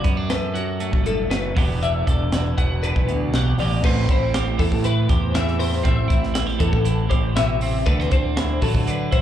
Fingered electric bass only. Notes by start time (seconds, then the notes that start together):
0.05 F#2
0.93 F#1
1.57 E1
2.07 E1
2.58 E1
2.96 B1
3.08 D2
3.33 B1
3.58 A1
3.84 A1
4.09 A1
4.59 E2
4.72 A2
5.09 E2
5.85 A1
6.10 A1
6.60 E2
6.73 A1
7.10 A1
7.87 D2
8.12 D2
8.62 A1
8.75 D3
9.12 A1